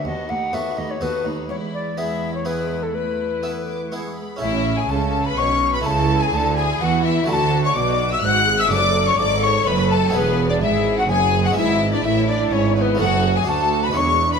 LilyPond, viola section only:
\new Staff \with { instrumentName = "Viola section" } { \time 3/4 \key a \major \tempo 4 = 126 b8 a8 b8 a8 b8 a8 | gis4 gis4 gis4 | a2 gis8 r8 | cis'4 cis'4 cis'4 |
e'4 e'2 | fis'4 fis'4 fis'8 gis'8 | a'4 a'2 | gis'4 gis'4 gis'4 |
e'4 e'2 | a'8 gis'8 fis'4 d'4 | }